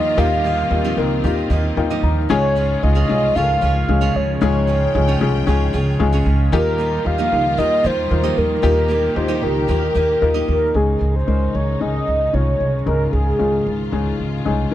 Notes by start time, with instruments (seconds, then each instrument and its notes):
Already playing: upright bass D#2, upright piano A#2 A#3 D#4 F4 G4, steel-string acoustic guitar D#3 F3 A#3 D#4 G4 D#5, string section D#3 G3 A#3 F4, soft synth lead D#5
0.17 upright bass D#2, upright piano A#2 A#3 D#4 F4 G4, steel-string acoustic guitar A#3 D#4 G4 D#5, string section C4, soft synth lead F5
0.44 steel-string acoustic guitar A#3 D#4 G4 D#5
0.70 upright bass D#2, upright piano A#3 D#4 F4 G4
0.84 steel-string acoustic guitar D#3 F3 A#3 D#4 G4 D#5
0.97 upright bass C#2, upright piano A#3 D#4 F4 A#4
1.24 upright bass D#2, upright piano A#3 D#4 F4 G4, steel-string acoustic guitar A#3 D#4 G4 D#5
1.50 upright bass D#2, steel-string acoustic guitar A#3 D#4 G4 D#5, upright piano D#5
1.77 upright bass D#2, upright piano A#3 D#4 F4 A#4 G5
1.90 steel-string acoustic guitar D#3 F3 A#3 D#4 G4 D#5
2.03 upright bass D#2, upright piano A#5
2.29 upright bass C#2, upright piano G#2 G#3 C#4 F4 G#4, string section C#3 F3 G#3 F4, steel-string acoustic guitar C#4 F4 G#4 C#5, soft synth lead C#5
2.56 steel-string acoustic guitar C#4 F4 G#4 C#5
2.82 upright bass C#2, upright piano G#3 C#4 F4 G#4, soft synth lead D#5
2.95 steel-string acoustic guitar C#3 C#4 F4 G#4 C#5
3.09 upright bass C2, upright piano G#3 C#4 F4 G#4
3.35 upright bass C#2, upright piano G#3 C#4 F4 A4, steel-string acoustic guitar C#4 F4 G#4 C#5, soft synth lead F5
3.43 upright piano A#4
3.61 upright bass C#2, steel-string acoustic guitar C#4 F4 G#4 C#5
3.88 upright bass C#2, upright piano G#3 C#4 F4 G#4
4.01 steel-string acoustic guitar C#3 C#4 F4 G#4 C#5
4.15 upright bass C#2, soft synth lead C#5
4.41 upright bass C#2, upright piano G#2 G#3 C#4 F4 G#4, steel-string acoustic guitar C#4 F4 G#4 C#5, soft synth lead C#5, string section G5
4.67 steel-string acoustic guitar C#4 F4 G#4 C#5
4.95 upright bass C#2, upright piano G#3 C#4 F4 G#4
5.08 steel-string acoustic guitar C#3 C#4 F4 G#4 C#5
5.20 upright bass C2, upright piano G#3 C#4 F4 G#4
5.46 upright bass C#2, upright piano G#3 C#4 F4 G#4, steel-string acoustic guitar C#4 F4 G#4 C#5
5.73 upright bass C#2, steel-string acoustic guitar C#4 F4 G#4 C#5
5.99 upright bass C#2, upright piano G#3 C#4 F4 G#4
6.13 steel-string acoustic guitar C#3 C#4 F4 G#4 C#5
6.26 upright bass C#2
6.52 upright bass D#2, upright piano A#2 A#3 D#4 F4 G4, string section D#3 G3 A#3 F4, steel-string acoustic guitar A#3 D#4 G4 D#5, soft synth lead A#4
6.78 steel-string acoustic guitar A#3 D#4 G4 D#5
7.05 upright bass D#2, upright piano A#3 D#4 F4 G4, soft synth lead F5
7.18 steel-string acoustic guitar D#3 F3 A#3 D#4 G4 D#5
7.32 upright bass C#2, upright piano A#3 D#4 F4 G4
7.57 upright bass D#2, steel-string acoustic guitar A#3 D#4 G4 D#5, upright piano A#3 D#4 F4 A#4, soft synth lead D#5
7.84 upright bass D#2, steel-string acoustic guitar A#3 D#4 G4 D#5, soft synth lead C5
8.10 upright bass D#2, upright piano A#3 D#4 F4 A#4
8.23 steel-string acoustic guitar D#3 F3 A#3 D#4 G4 D#5
8.37 upright bass D#2, soft synth lead A#4
8.62 upright bass D#2, upright piano A#2 A#3 D#4 F4 G4, steel-string acoustic guitar A#3 D#4 G4 D#5, string section G4, soft synth lead A#4
8.88 steel-string acoustic guitar A#3 D#4 G4 D#5
9.16 upright bass D#2, upright piano A#3 D#4 F4 G4, soft synth lead C5
9.28 steel-string acoustic guitar D#3 F3 A#3 D#4 G4 D#5
9.42 upright bass C#2, upright piano A#3 D#4 F4 G4, soft synth lead A#4
9.68 upright bass D#2, steel-string acoustic guitar A#3 D#4 G4 D#5, upright piano A#3 D#4 F4 G4
9.94 upright bass D#2, steel-string acoustic guitar A#3 D#4 G4 D#5
10.22 upright bass D#2, upright piano A#3 D#4 F4 A#4
10.34 steel-string acoustic guitar D#3 F3 A#3 D#4 G4 D#5
10.48 upright bass D#2, soft synth lead A#4
10.75 upright bass C#2, upright piano G#2 G#3 C#4 D#4 G#4, string section C#3 D#3 G#3 D#4, soft synth lead G#4
11.01 upright bass C#2
11.16 soft synth lead C5
11.27 upright bass C#2, upright piano G#3 C#4 D#4 A#4
11.55 upright bass C#2, soft synth lead C#5
11.81 upright bass C#2, upright piano G#3 C#4 D#4 G#4, soft synth lead D#5
12.08 upright bass C#2
12.33 upright bass C2, upright piano G#3 C#4 D#4 F4, soft synth lead C#5
12.60 upright bass C2
12.86 upright bass C#2, upright piano G#2 G#3 C#4 D#4 A#4, string section F4, soft synth lead A#4
13.12 upright bass C#2, soft synth lead G#4
13.39 upright bass C#2, upright piano G#3 C#4 D#4 F4
13.66 upright bass C#2
13.92 upright bass C#2, upright piano G#3 C#4 D#4 G#4
14.19 upright bass C#2
14.45 upright bass C2, upright piano G#3 C#4 D#4 G#4
14.71 string section A#3